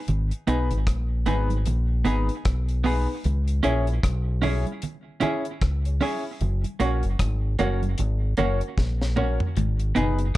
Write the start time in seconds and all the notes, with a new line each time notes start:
0.08 G#1, closed hi-hat, low conga
0.31 closed hi-hat
0.47 B1 B3 D#4 G#4 B4, closed hi-hat
0.71 G#1, closed hi-hat
0.87 A#1, kick, cross-stick, closed hi-hat, high conga
1.26 G#1 B3 D#4 G#4 B4, closed hi-hat, high conga, low conga
1.50 closed hi-hat, high conga
1.66 A#1, closed hi-hat, low conga
2.05 G#1 B3 D#4 G#4 B4, closed hi-hat, low conga
2.29 closed hi-hat
2.45 B1, kick, cross-stick, closed hi-hat
2.69 closed hi-hat
2.84 B3 D#4 G#4 B4, open hi-hat, high conga
3.24 C#2, closed hi-hat, low conga
3.48 closed hi-hat
3.63 A#1 C#4 E4 G#4 C#5, closed hi-hat
3.87 closed hi-hat
4.03 B1, kick, cross-stick, closed hi-hat, high conga
4.42 C#4 E4 G#4 C#5, open hi-hat, high conga, low conga
4.66 closed hi-hat, high conga
4.82 closed hi-hat, low conga
5.20 C#4 E4 G#4 C#5, closed hi-hat, low conga
5.45 closed hi-hat
5.61 C#2, kick, cross-stick, closed hi-hat
5.85 G#4 C#5, closed hi-hat
6.01 C#4 E4 G#4 C#5, open hi-hat, high conga
6.41 F#1, closed hi-hat, low conga
6.64 closed hi-hat, high conga
6.80 A#1 A#3 C#4 F#4 A#4 C#5, closed hi-hat
7.03 F#1, closed hi-hat
7.19 G#1, kick, cross-stick, closed hi-hat, high conga
7.59 F#1 A#3 C#4 F#4 A#4 C#5, closed hi-hat, high conga, low conga
7.83 closed hi-hat, high conga
7.98 G#1, closed hi-hat, low conga
8.37 F#1 A#3 C#4 F#4 A#4 C#5, closed hi-hat, low conga
8.61 closed hi-hat
8.78 A#1, kick, snare, high conga
9.02 snare
9.16 A#3 C#4 F#4 A#4 C#5, mid tom, high conga
9.40 floor tom
9.57 G#1 G#2, closed hi-hat, low conga
9.80 closed hi-hat
9.95 F#1 B2 B3 D#4 G#4 B4, closed hi-hat
10.19 closed hi-hat